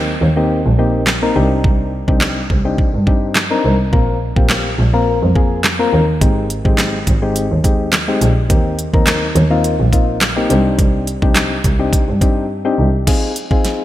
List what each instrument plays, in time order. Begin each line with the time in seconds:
Already playing: double bass D#2, synth keys A#3 C4 D#4 G4
0.21 double bass D#2
0.36 synth keys A#3 C4 D#4 G4
0.65 double bass A#1
0.78 synth keys A#3 C4 D#4 G4
1.07 snare, clap
1.22 synth keys A#3 C4 D#4 A#4
1.35 double bass C2, synth keys C4 D4 D#4 G4
1.64 double bass C2, kick
2.08 double bass C2, synth keys C4 D4 D#4 G4, kick
2.21 snare, clap
2.50 double bass C2, kick
2.65 synth keys C4 D4 D#4 G4
2.78 kick
2.94 double bass G2
3.07 synth keys C4 D4 D#4 G4, kick
3.35 snare, clap
3.51 synth keys C4 D4 D#4 A#4
3.64 double bass C2
3.92 double bass A#1, synth keys A#3 C4 F4 A#4, kick
4.36 double bass A#1, synth keys A#3 C4 F4 G4, kick
4.49 snare, clap
4.79 double bass A#1
4.93 synth keys A#3 C4 F4 A#4
5.22 double bass F2
5.35 synth keys A#3 C4 F4 G#4, kick
5.64 snare, clap
5.79 synth keys A#3 C4 F4 A#4
5.93 double bass D#2
6.21 double bass G#1, synth keys G#3 C4 D#4 G4, kick, closed hi-hat
6.50 closed hi-hat
6.65 double bass G#1, synth keys G#3 C4 D#4 G4, kick
6.78 snare, clap, closed hi-hat
7.07 double bass G#1, kick, closed hi-hat
7.22 synth keys G#3 C4 D#4 G4
7.36 closed hi-hat
7.51 double bass D#2
7.64 synth keys G#3 C4 D#4 G4, kick, closed hi-hat
7.93 snare, clap, closed hi-hat
8.08 synth keys G#3 C4 D#4 G4
8.21 double bass A#1, closed hi-hat
8.50 double bass D#2, synth keys A#3 C4 D#4 G4, kick, closed hi-hat
8.79 closed hi-hat
8.93 double bass D#2, synth keys A#3 C4 D#4 A#4, kick
9.07 snare, clap, closed hi-hat
9.35 double bass D#2, closed hi-hat
9.50 synth keys A#3 C4 D#4 F4
9.64 closed hi-hat
9.79 double bass A#1
9.92 synth keys A#3 C4 D#4 F4, kick, closed hi-hat
10.21 snare, clap, closed hi-hat
10.36 synth keys A#3 C4 D#4 G4
10.50 double bass C2, synth keys C4 D4 D#4 G4, closed hi-hat
10.79 double bass C2, kick, closed hi-hat
11.07 closed hi-hat
11.22 double bass C2, synth keys C4 D4 D#4 G4, kick
11.35 snare, clap, closed hi-hat
11.64 double bass C2, kick, closed hi-hat
11.79 synth keys C4 D4 D#4 G4
11.93 kick, closed hi-hat
12.08 double bass G2
12.21 synth keys C4 D4 D#4 G4, kick, closed hi-hat
12.65 synth keys C4 D4 D#4 G4
12.79 double bass C2
13.07 synth keys C4 D#4 F4 G#4, kick, snare, closed hi-hat, crash
13.36 closed hi-hat
13.51 synth keys C4 D#4 F4 G#4, kick
13.64 snare, closed hi-hat